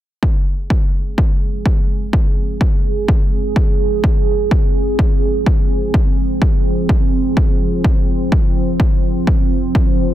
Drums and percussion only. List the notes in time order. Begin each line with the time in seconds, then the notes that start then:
0.23 kick
0.70 kick
1.18 kick
1.66 kick
2.13 kick
2.61 kick
3.08 kick
3.56 kick
4.04 kick
4.51 kick
4.99 kick
5.46 kick
5.94 kick
6.42 kick
6.89 kick
7.37 kick
7.84 kick
8.32 kick
8.80 kick
9.27 kick
9.75 kick